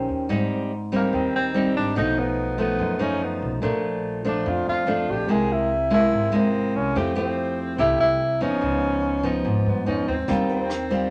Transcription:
Already playing: D#3 C#4 G4 C5
0.09 D#2
0.29 G#1 G#2 G3 C4 D#4
0.92 G3 A#3 C4 D#4
1.13 D#2 D#3 C4
1.34 D#2 C4
1.54 G3 C4 D#4
1.76 G#1 D4
1.95 B1 B2 F3 A3 D#4
2.19 B3
2.58 F3 A3 B3 D#4
2.79 F#2
2.99 F#2 F3 A3 C#4 D#4
3.23 B3
3.42 B1
3.62 A#1 A#2 F3 A3 D4
4.25 F3 A3 D4
4.46 F2 F4
4.67 F2 F4
4.87 F3 A3 D4
5.08 A#1 G4
5.28 C2 C3 G#3 A#3 E4 G#4
5.52 E4
5.90 G#3 A#3 E4
6.12 G#1 C3
6.32 G#1 G#3 A#3 E4
6.36 C4
6.75 C2 C#4
6.95 F2 F3 A3 C4 E4 G4
7.15 A3 C4 E4 G4
7.78 C2 C3 A3 E4 G4
8.00 C2 E4
8.41 F2 F3 B3 C#4 D#4
8.61 C#2 C#3
9.23 F3 B3 D#4
9.44 G#1 G#2
9.66 G2 B3
9.86 F2 F3 B3 C#4 D#4
10.08 D#2 C4
10.28 D#2 D#3 G3 C4 F4, kick, closed hi-hat
10.49 C4, closed hi-hat
10.70 cross-stick, closed hi-hat
10.90 G3 C4 F4, kick, closed hi-hat

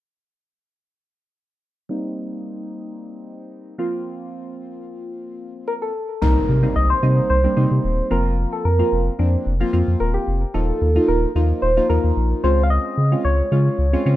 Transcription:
1.89 G3 A#3 C4 D#4
3.78 F3 A#3 C4 F4
5.68 A#4
5.82 A4
6.22 C2 G3 A#3 C4 D#4 A#4, impact
6.49 C3
6.63 G3 A#3 C4 D#4
6.76 C2 D#5
6.90 C5
7.02 C3 G3 A#3 C4 D#4
7.30 C2 C5
7.44 G3 A#3 C4 D4
7.56 C3 G3 A#3 C4 D#4
7.71 C3
7.84 D#1
8.10 F1 F3 A#3 C4 F4 A#4
8.53 A4
8.65 F2 A#4
8.79 F3 A#3 C4 F4
8.92 F1
9.19 F2 F3 A#3 C4 D4
9.46 F1
9.60 F3 A#3 C4 F4
9.73 F2 F3 A#3 C4 F4
9.88 F2
10.00 D#1 A#4
10.14 G4
10.27 F1
10.54 D#1 F3 A#3 D#4 F4 A4
10.81 D#2
10.95 F3 A#3 D#4 F4
11.08 D#1 A#4
11.35 D#2 F3 A#3 D#4 F4
11.62 D#1 C5
11.77 F3 A#3 D#4 F4
11.89 D#2 F3 A#3 D#4 F4 A#4
12.04 D#2
12.17 A#1
12.44 C#2 G#3 C4 C#4 F4 C5
12.63 F5
12.70 D#5
12.97 C#3
13.12 G#3 C4 C#4 F4
13.25 C#2 C#5
13.52 C#3 G#3 C#4 F4
13.78 C#2
13.93 G#3 C4 C#4 F4
14.06 C#3 G#3 C4 C#4 F4

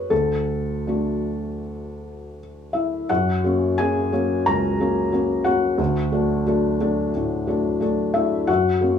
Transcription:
Already playing: B4 C#5
0.10 D2 A4
0.87 A3 D4 F#4
2.73 E4 E5
3.09 F#2 F#4 F#5
3.44 F#3 A#3 C#4
3.78 F#3 A#3 C#4 G#4 G#5
4.12 F#3 A#3 C#4
4.46 C#2 A#4 A#5
4.80 F#3 A#3 C#4
5.12 F#3 A#3 C#4
5.44 F#3 A#3 C#4 F#4 F#5
5.78 D2
6.12 F#3 A3 D4
6.47 F#3 A3 D4
6.80 F#3 A3 D4
7.15 A2
7.47 F#3 A3 D4
7.80 F#3 A3 D4
8.14 F#3 A3 D4 E4 E5
8.47 F#2 F#4 F#5
8.81 F#3 A#3 C#4

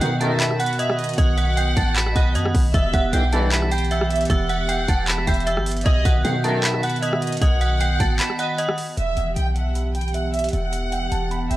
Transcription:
Already playing: D#3 B3 F#4
0.01 B1 F#2 B2 D#3 F#5 G5 G6, closed hi-hat
0.20 B1 F#2 D#3 E5 A5 A6, closed hi-hat
0.40 B5 B6, clap, closed hi-hat
0.51 cross-stick
0.59 F#5 F#6, closed hi-hat
0.66 closed hi-hat
0.73 closed hi-hat
0.79 D#5 E5 D#6, closed hi-hat
0.90 cross-stick
0.99 D#5, closed hi-hat
1.04 closed hi-hat
1.09 closed hi-hat
1.14 closed hi-hat
1.18 B1 D#5 F#5 D#6, kick, closed hi-hat
1.38 F#5 F#6, closed hi-hat
1.57 G5 G6, closed hi-hat
1.77 A1 A5 A6, kick, closed hi-hat
1.96 B5 B6, clap, closed hi-hat
2.06 cross-stick
2.16 B1 D#5 F#5 F#6, kick, closed hi-hat
2.35 F#2 D#5 D#6, closed hi-hat
2.45 cross-stick
2.55 B1, kick, open hi-hat
2.74 E1 E3 G4 E5 E6, kick, closed hi-hat
2.94 E1 F#5 F#6, kick, closed hi-hat
3.13 B1 G2 E3 G5 G6, closed hi-hat
3.32 B1 G2 E3 F#5 A5 A6, closed hi-hat
3.52 B5 B6, clap, closed hi-hat
3.62 cross-stick
3.71 G5 G6, closed hi-hat
3.78 closed hi-hat
3.85 closed hi-hat
3.91 E5 F#5 E6, closed hi-hat
4.01 cross-stick
4.10 E5, closed hi-hat
4.16 closed hi-hat
4.21 closed hi-hat
4.25 closed hi-hat
4.30 E1 E5 F#5 E6, kick, closed hi-hat
4.49 F#5 F#6, closed hi-hat
4.69 G5 G6, closed hi-hat
4.88 E1 A5 A6, kick, closed hi-hat
5.08 B5 B6, clap, closed hi-hat
5.18 cross-stick
5.27 E1 E5 G5 G6, kick, closed hi-hat
5.34 closed hi-hat
5.40 closed hi-hat
5.47 E5 E6, closed hi-hat
5.57 G1, cross-stick
5.66 closed hi-hat, open hi-hat
5.71 closed hi-hat
5.77 closed hi-hat
5.81 closed hi-hat
5.86 B1 D#3 B3 F#4 D#5 D#6, kick, closed hi-hat
6.05 B1 F#5 F#6, kick, closed hi-hat
6.24 B1 F#2 B2 D#3 F#5 G5 G6, closed hi-hat
6.44 B1 F#2 D#3 E5 A5 A6, closed hi-hat
6.64 B5 B6, clap, closed hi-hat
6.74 cross-stick
6.83 F#5 F#6, closed hi-hat
6.90 closed hi-hat
6.96 closed hi-hat
7.02 D#5 E5 D#6, closed hi-hat
7.13 cross-stick
7.22 D#5, closed hi-hat
7.27 closed hi-hat
7.32 closed hi-hat
7.37 closed hi-hat
7.41 B1 D#5 F#5 D#6, kick, closed hi-hat
7.61 F#5 F#6, closed hi-hat
7.80 G5 G6, closed hi-hat
8.00 A1 A5 A6, kick, closed hi-hat
8.19 B5 B6, clap, closed hi-hat
8.30 cross-stick
8.39 D#5 F#5 F#6, closed hi-hat
8.58 D#5 D#6, closed hi-hat
8.69 cross-stick
8.78 open hi-hat
8.97 E1 E3 B3 G4 E5, closed hi-hat
9.17 E1 F#5 F#6, closed hi-hat
9.36 B1 G5, closed hi-hat
9.56 F#5 A5 A6, closed hi-hat
9.75 B5, closed hi-hat
9.95 G5 G6, closed hi-hat
10.01 closed hi-hat
10.08 closed hi-hat
10.14 E5 F#5 E6, closed hi-hat
10.34 E5, closed hi-hat
10.39 closed hi-hat
10.44 closed hi-hat
10.49 closed hi-hat
10.53 E1 E5 F#5 E6, closed hi-hat
10.73 F#5 F#6, closed hi-hat
10.92 G5 G6, closed hi-hat
11.12 E1 A5 A6, closed hi-hat
11.31 B5 B6, closed hi-hat
11.51 E1 E5 G5 G6, closed hi-hat

